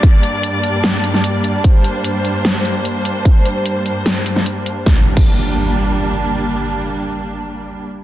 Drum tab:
CC |----------------|----------------|----------------|---x------------|
HH |x-x-x-x-x-x-x-x-|x-x-x-x-x-x-x-x-|x-x-x-x-x-x-x-x-|----------------|
SD |--------o--o----|--------o-------|--------o--o----|o---------------|
BD |o---------------|o---------------|o---------------|o--o------------|

CC |----------------|
HH |----------------|
SD |----------------|
BD |----------------|